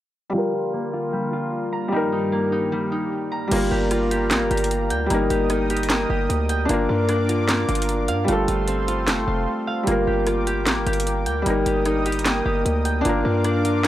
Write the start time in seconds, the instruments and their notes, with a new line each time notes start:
0.30 analog synth pad D3 G3 A#3 F4, felt piano G3, harp G3
0.34 felt piano F4
0.38 felt piano A#4
0.53 harp F4
0.73 harp A#3
0.93 harp F4
1.13 harp G3
1.33 harp F4
1.73 harp A#5
1.88 felt piano G3
1.92 analog synth pad G2 D#3 G4, harp G3, felt piano D#4
1.96 felt piano A#4
2.12 harp D#4
2.32 harp A#3
2.52 harp D#4
2.72 harp G3
2.92 harp D#4
3.32 harp A#5
3.48 808-style bass G1, felt piano G3, harp A#3, analog synth pad G4 D5 F5 A#5, closed hi-hat, crash
3.52 felt piano F4
3.56 felt piano A#4
3.71 808-style bass G1, harp G4
3.91 harp F4, cross-stick, closed hi-hat
4.11 harp G4, closed hi-hat
4.31 808-style bass A1, harp A#3, snare, clap, closed hi-hat
4.41 808-style bass G1
4.51 808-style bass G1, harp G4, closed hi-hat
4.57 closed hi-hat
4.64 closed hi-hat
4.71 closed hi-hat
4.90 808-style bass D2, harp G5, closed hi-hat
5.06 felt piano G3
5.10 808-style bass G1, harp A#3, felt piano D#4, analog synth pad A#4 D#5 G5 D#6, closed hi-hat
5.14 felt piano A#4
5.30 808-style bass G1, harp G4, closed hi-hat
5.50 harp D#4, cross-stick, closed hi-hat
5.70 harp G4, closed hi-hat
5.77 closed hi-hat
5.83 closed hi-hat
5.90 harp A#3, snare, clap, closed hi-hat
6.10 808-style bass G1, harp G4
6.30 808-style bass D2, closed hi-hat
6.49 harp G5, closed hi-hat
6.65 808-style bass G1, harp A#3, felt piano D4, closed hi-hat
6.69 felt piano F4, analog synth pad A#4 D5 F5 D6
6.73 felt piano A#4
6.89 808-style bass G2, harp F4
7.09 harp D4, cross-stick, closed hi-hat
7.29 harp F4, closed hi-hat
7.49 harp A#3, snare, clap, closed hi-hat
7.69 808-style bass G1, harp F4, closed hi-hat
7.75 closed hi-hat
7.82 closed hi-hat
7.89 closed hi-hat
8.08 808-style bass G2, harp F5, closed hi-hat
8.24 felt piano G3, harp A3, closed hi-hat
8.28 808-style bass G1, felt piano F4, analog synth pad A4 C5 C6
8.32 felt piano A4
8.48 808-style bass G1, harp F4, closed hi-hat
8.68 harp C4, closed hi-hat
8.88 harp F4, closed hi-hat
9.08 808-style bass F1, harp A3, snare, clap, closed hi-hat
9.18 808-style bass G1
9.28 808-style bass F1, harp F4
9.67 harp F5
9.83 808-style bass G1, felt piano G3, harp A#3, closed hi-hat
9.87 felt piano F4, analog synth pad A#4 G5 D6
9.91 felt piano A#4
10.07 808-style bass G1, harp G4
10.27 harp F4, cross-stick, closed hi-hat
10.47 harp G4, closed hi-hat
10.67 808-style bass A1, harp A#3, snare, clap, closed hi-hat
10.77 808-style bass G1
10.87 808-style bass G1, harp G4, closed hi-hat
10.93 closed hi-hat
11.00 closed hi-hat
11.07 closed hi-hat
11.26 808-style bass D2, harp G5, closed hi-hat
11.42 felt piano G3
11.46 808-style bass G1, harp A#3, felt piano D#4, analog synth pad D#5 G5 D#6, closed hi-hat
11.50 felt piano A#4
11.66 808-style bass G1, harp G4, closed hi-hat
11.85 harp D#4, cross-stick, closed hi-hat
12.06 harp G4, closed hi-hat
12.12 closed hi-hat
12.19 closed hi-hat
12.26 harp A#3, snare, clap, closed hi-hat
12.45 808-style bass G1, harp G4
12.65 808-style bass D2, closed hi-hat
12.85 harp G5, closed hi-hat
13.01 harp A#3, felt piano D4
13.05 808-style bass G1, felt piano F4, analog synth pad A#4 D5 F5 D6, closed hi-hat
13.09 felt piano A#4
13.25 808-style bass G2, harp F4
13.44 harp D4, cross-stick, closed hi-hat
13.65 harp F4, closed hi-hat